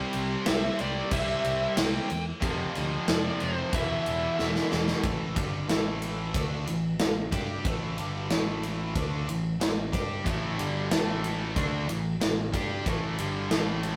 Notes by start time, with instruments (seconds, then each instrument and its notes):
Already playing: distorted electric guitar C3 G3 C4
0.13 fingered electric bass C2, crash
0.45 fingered electric bass C2, distorted electric guitar C3 G3 C4, lead electric guitar E5, snare, crash
0.78 fingered electric bass C2, distorted electric guitar C3 G3 C4, lead electric guitar D5, crash
1.10 fingered electric bass C2, distorted electric guitar C3 G3 C4, lead electric guitar E5, kick, crash
1.44 fingered electric bass C2, distorted electric guitar C3 G3 C4, crash
1.77 fingered electric bass C2, lead electric guitar G5, snare, crash
2.10 fingered electric bass E2, crash
2.41 fingered electric bass F1, distorted electric guitar F2 C3 F3, kick, crash
2.75 fingered electric bass D2, snare, crash
3.08 fingered electric bass F1, lead electric guitar D5, snare, crash
3.39 fingered electric bass F1, distorted electric guitar F2 C3 F3, crash
3.44 lead electric guitar C5
3.72 fingered electric bass E1, distorted electric guitar E2 B2 E3, lead electric guitar E5, kick, crash
4.06 fingered electric bass E1, crash
4.39 fingered electric bass E1, snare
4.56 snare
4.69 fingered electric bass E1, distorted electric guitar E2 B2 E3, snare
4.88 snare
5.03 fingered electric bass A1, distorted electric guitar A2 E3 A3, kick, ride
5.35 fingered electric bass G1, distorted electric guitar G2 D3 G3, kick, ride
5.69 fingered electric bass A1, distorted electric guitar A2 E3 A3, snare, ride
6.02 ride
6.34 fingered electric bass D2, distorted electric guitar D3 A3 D4, kick, ride
6.66 fingered electric bass A1, distorted electric guitar A2 E3, ride
6.99 fingered electric bass A1, distorted electric guitar A2 E3, snare, ride
7.32 fingered electric bass G2, distorted electric guitar G3 D4 G4, kick, ride
7.65 fingered electric bass A1, distorted electric guitar A2 E3 A3, kick, ride
7.97 fingered electric bass G1, distorted electric guitar G2 D3 G3, ride
8.30 fingered electric bass A1, distorted electric guitar A2 E3 A3, snare, ride
8.63 ride
8.95 fingered electric bass D2, distorted electric guitar D3 A3 D4, kick, ride
9.28 fingered electric bass A1, distorted electric guitar A2 E3, ride
9.61 fingered electric bass A1, distorted electric guitar A2 E3, snare, ride
9.93 fingered electric bass G2, distorted electric guitar G3 D4 G4, kick, ride
10.26 fingered electric bass A1, distorted electric guitar A2 E3 A3, kick, ride
10.59 fingered electric bass G1, distorted electric guitar G2 D3 G3, ride
10.91 fingered electric bass A1, distorted electric guitar A2 E3 A3, snare, ride
11.24 ride
11.56 fingered electric bass D2, distorted electric guitar D3 A3 D4, kick, ride
11.89 fingered electric bass A1, distorted electric guitar A2 E3, ride
12.21 fingered electric bass A1, distorted electric guitar A2 E3, snare, ride
12.54 fingered electric bass G2, distorted electric guitar G3 D4 G4, kick, ride
12.86 fingered electric bass A1, distorted electric guitar A2 E3 A3, kick, ride
13.18 fingered electric bass G1, distorted electric guitar G2 D3 G3, ride
13.50 fingered electric bass A1, distorted electric guitar A2 E3 A3, snare, ride
13.83 ride